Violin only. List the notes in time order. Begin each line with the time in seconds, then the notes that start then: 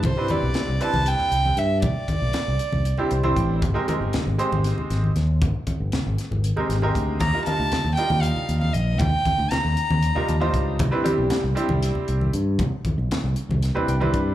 0.05 C5
0.30 D5
0.82 A5
1.08 G5
1.58 E5
1.82 D5
7.21 A#5
7.45 A5
7.95 G5
8.21 F5
8.60 F5
8.73 D#5
8.98 G5
9.50 A#5